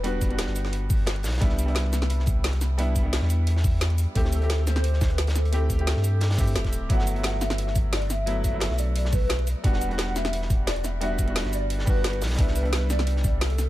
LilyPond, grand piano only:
\new Staff \with { instrumentName = "Grand piano" } { \time 4/4 \key g \major \tempo 4 = 175 <g b d' fis'>8. <g b d' fis'>2.~ <g b d' fis'>16 | <g b d' e'>8. <g b d' e'>2.~ <g b d' e'>16 | <g b d' e'>8. <g b d' e'>2.~ <g b d' e'>16 | <a c' e' g'>8. <a c' e' g'>2.~ <a c' e' g'>16 |
<a c' e' g'>8. <a c' e' g'>4.~ <a c' e' g'>16 <a c' e' g'>4. | <fis a b e'>8. <fis a b e'>2.~ <fis a b e'>16 | <fis a b e'>8. <fis a b e'>2.~ <fis a b e'>16 | <g b d' fis'>8. <g b d' fis'>2.~ <g b d' fis'>16 |
<g b d' fis'>8. <g b d' fis'>4.~ <g b d' fis'>16 <g b d' fis'>4. | <g b d' e'>8. <g b d' e'>2.~ <g b d' e'>16 | }